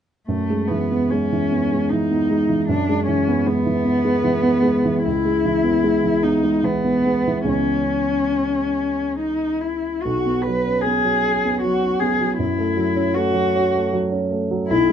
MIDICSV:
0, 0, Header, 1, 3, 480
1, 0, Start_track
1, 0, Tempo, 826446
1, 165, Time_signature, 3, 2, 24, 8
1, 643, Tempo, 780234
1, 2563, Tempo, 807537
1, 4003, Tempo, 848656
1, 5923, Tempo, 811908
1, 6403, Tempo, 765306
1, 8953, End_track
2, 0, Start_track
2, 0, Title_t, "Cello"
2, 0, Program_c, 0, 42
2, 161, Note_on_c, 0, 57, 45
2, 397, Note_on_c, 0, 59, 44
2, 406, Note_off_c, 0, 57, 0
2, 637, Note_on_c, 0, 61, 47
2, 646, Note_off_c, 0, 59, 0
2, 1127, Note_on_c, 0, 63, 49
2, 1137, Note_off_c, 0, 61, 0
2, 1607, Note_off_c, 0, 63, 0
2, 1611, Note_on_c, 0, 62, 51
2, 1843, Note_off_c, 0, 62, 0
2, 1846, Note_on_c, 0, 61, 50
2, 2090, Note_on_c, 0, 59, 60
2, 2100, Note_off_c, 0, 61, 0
2, 3041, Note_off_c, 0, 59, 0
2, 3045, Note_on_c, 0, 64, 64
2, 3750, Note_on_c, 0, 63, 51
2, 3758, Note_off_c, 0, 64, 0
2, 3999, Note_on_c, 0, 59, 52
2, 4008, Note_off_c, 0, 63, 0
2, 4470, Note_off_c, 0, 59, 0
2, 4474, Note_on_c, 0, 61, 54
2, 5425, Note_off_c, 0, 61, 0
2, 5435, Note_on_c, 0, 63, 45
2, 5673, Note_on_c, 0, 64, 37
2, 5682, Note_off_c, 0, 63, 0
2, 5910, Note_on_c, 0, 66, 44
2, 5918, Note_off_c, 0, 64, 0
2, 6146, Note_on_c, 0, 71, 48
2, 6155, Note_off_c, 0, 66, 0
2, 6381, Note_on_c, 0, 68, 51
2, 6390, Note_off_c, 0, 71, 0
2, 6871, Note_off_c, 0, 68, 0
2, 6874, Note_on_c, 0, 66, 50
2, 7116, Note_on_c, 0, 68, 44
2, 7125, Note_off_c, 0, 66, 0
2, 7355, Note_off_c, 0, 68, 0
2, 7359, Note_on_c, 0, 64, 51
2, 7835, Note_on_c, 0, 66, 59
2, 7844, Note_off_c, 0, 64, 0
2, 8324, Note_off_c, 0, 66, 0
2, 8801, Note_on_c, 0, 64, 67
2, 8953, Note_off_c, 0, 64, 0
2, 8953, End_track
3, 0, Start_track
3, 0, Title_t, "Grand piano"
3, 0, Program_c, 1, 0
3, 165, Note_on_c, 1, 42, 31
3, 261, Control_c, 1, 64, 127
3, 291, Note_on_c, 1, 56, 27
3, 411, Note_on_c, 1, 52, 26
3, 480, Note_off_c, 1, 56, 0
3, 531, Note_on_c, 1, 59, 27
3, 599, Note_off_c, 1, 52, 0
3, 651, Note_on_c, 1, 56, 28
3, 720, Note_off_c, 1, 59, 0
3, 776, Note_on_c, 1, 52, 25
3, 844, Note_off_c, 1, 56, 0
3, 896, Note_on_c, 1, 59, 28
3, 967, Note_off_c, 1, 52, 0
3, 1020, Note_on_c, 1, 56, 26
3, 1086, Note_off_c, 1, 59, 0
3, 1146, Note_on_c, 1, 52, 27
3, 1208, Note_off_c, 1, 56, 0
3, 1260, Note_on_c, 1, 59, 27
3, 1330, Note_off_c, 1, 52, 0
3, 1379, Note_on_c, 1, 56, 28
3, 1447, Note_off_c, 1, 59, 0
3, 1495, Note_on_c, 1, 52, 30
3, 1568, Note_off_c, 1, 56, 0
3, 1588, Note_off_c, 1, 42, 0
3, 1614, Note_off_c, 1, 52, 0
3, 1617, Note_on_c, 1, 42, 34
3, 1624, Control_c, 1, 64, 0
3, 1708, Control_c, 1, 64, 127
3, 1740, Note_on_c, 1, 56, 28
3, 1860, Note_on_c, 1, 52, 28
3, 1932, Note_off_c, 1, 56, 0
3, 1980, Note_on_c, 1, 59, 31
3, 2051, Note_off_c, 1, 52, 0
3, 2096, Note_on_c, 1, 56, 32
3, 2170, Note_off_c, 1, 59, 0
3, 2215, Note_on_c, 1, 52, 27
3, 2285, Note_off_c, 1, 56, 0
3, 2330, Note_on_c, 1, 59, 31
3, 2401, Note_off_c, 1, 52, 0
3, 2452, Note_on_c, 1, 56, 34
3, 2516, Note_off_c, 1, 59, 0
3, 2570, Note_on_c, 1, 52, 33
3, 2634, Note_off_c, 1, 56, 0
3, 2679, Note_on_c, 1, 59, 33
3, 2756, Note_off_c, 1, 52, 0
3, 2799, Note_on_c, 1, 56, 32
3, 2880, Note_off_c, 1, 59, 0
3, 2934, Note_on_c, 1, 52, 35
3, 3003, Note_off_c, 1, 56, 0
3, 3033, Note_off_c, 1, 42, 0
3, 3054, Note_on_c, 1, 37, 39
3, 3056, Note_off_c, 1, 52, 0
3, 3065, Control_c, 1, 64, 0
3, 3173, Note_on_c, 1, 56, 33
3, 3179, Control_c, 1, 64, 127
3, 3291, Note_on_c, 1, 52, 30
3, 3360, Note_off_c, 1, 56, 0
3, 3401, Note_on_c, 1, 59, 33
3, 3477, Note_off_c, 1, 52, 0
3, 3520, Note_on_c, 1, 56, 32
3, 3591, Note_off_c, 1, 59, 0
3, 3634, Note_on_c, 1, 52, 30
3, 3711, Note_off_c, 1, 56, 0
3, 3759, Note_on_c, 1, 59, 30
3, 3829, Note_off_c, 1, 52, 0
3, 3877, Note_on_c, 1, 56, 30
3, 3953, Note_off_c, 1, 59, 0
3, 3994, Note_on_c, 1, 52, 31
3, 4070, Note_off_c, 1, 56, 0
3, 4113, Note_on_c, 1, 59, 28
3, 4186, Note_off_c, 1, 52, 0
3, 4234, Note_on_c, 1, 56, 25
3, 4305, Note_off_c, 1, 59, 0
3, 4356, Note_on_c, 1, 52, 28
3, 4427, Note_off_c, 1, 56, 0
3, 4443, Note_off_c, 1, 37, 0
3, 4449, Note_off_c, 1, 52, 0
3, 4451, Note_on_c, 1, 37, 31
3, 4458, Note_on_c, 1, 52, 22
3, 4464, Note_on_c, 1, 59, 22
3, 4470, Note_on_c, 1, 61, 24
3, 4485, Control_c, 1, 64, 0
3, 4594, Control_c, 1, 64, 127
3, 5887, Note_off_c, 1, 37, 0
3, 5890, Note_off_c, 1, 52, 0
3, 5894, Note_off_c, 1, 59, 0
3, 5899, Note_off_c, 1, 61, 0
3, 5927, Note_on_c, 1, 35, 31
3, 5933, Control_c, 1, 64, 0
3, 6043, Control_c, 1, 64, 127
3, 6050, Note_on_c, 1, 59, 26
3, 6176, Note_on_c, 1, 54, 26
3, 6239, Note_off_c, 1, 59, 0
3, 6293, Note_on_c, 1, 61, 27
3, 6361, Note_off_c, 1, 54, 0
3, 6405, Note_on_c, 1, 59, 27
3, 6483, Note_off_c, 1, 61, 0
3, 6524, Note_on_c, 1, 54, 24
3, 6602, Note_off_c, 1, 59, 0
3, 6720, Note_off_c, 1, 54, 0
3, 6776, Note_on_c, 1, 59, 28
3, 6898, Note_on_c, 1, 54, 27
3, 6964, Note_off_c, 1, 59, 0
3, 7085, Note_off_c, 1, 54, 0
3, 7132, Note_on_c, 1, 59, 29
3, 7251, Note_on_c, 1, 54, 31
3, 7322, Note_off_c, 1, 59, 0
3, 7345, Note_off_c, 1, 35, 0
3, 7364, Note_on_c, 1, 42, 31
3, 7369, Note_off_c, 1, 54, 0
3, 7378, Control_c, 1, 64, 0
3, 7467, Control_c, 1, 64, 127
3, 7485, Note_on_c, 1, 57, 29
3, 7600, Note_on_c, 1, 54, 29
3, 7673, Note_off_c, 1, 57, 0
3, 7724, Note_on_c, 1, 61, 34
3, 7790, Note_off_c, 1, 54, 0
3, 7847, Note_on_c, 1, 57, 33
3, 7914, Note_off_c, 1, 61, 0
3, 7962, Note_on_c, 1, 54, 33
3, 8037, Note_off_c, 1, 57, 0
3, 8095, Note_on_c, 1, 61, 36
3, 8157, Note_off_c, 1, 54, 0
3, 8217, Note_on_c, 1, 57, 36
3, 8284, Note_off_c, 1, 61, 0
3, 8331, Note_on_c, 1, 54, 34
3, 8404, Note_off_c, 1, 57, 0
3, 8450, Note_on_c, 1, 61, 36
3, 8520, Note_off_c, 1, 54, 0
3, 8569, Note_on_c, 1, 57, 32
3, 8638, Note_off_c, 1, 61, 0
3, 8694, Note_on_c, 1, 54, 38
3, 8757, Note_off_c, 1, 57, 0
3, 8776, Note_off_c, 1, 42, 0
3, 8808, Note_off_c, 1, 54, 0
3, 8812, Control_c, 1, 64, 0
3, 8816, Note_on_c, 1, 35, 40
3, 8916, Control_c, 1, 64, 127
3, 8953, Note_off_c, 1, 35, 0
3, 8953, End_track
0, 0, End_of_file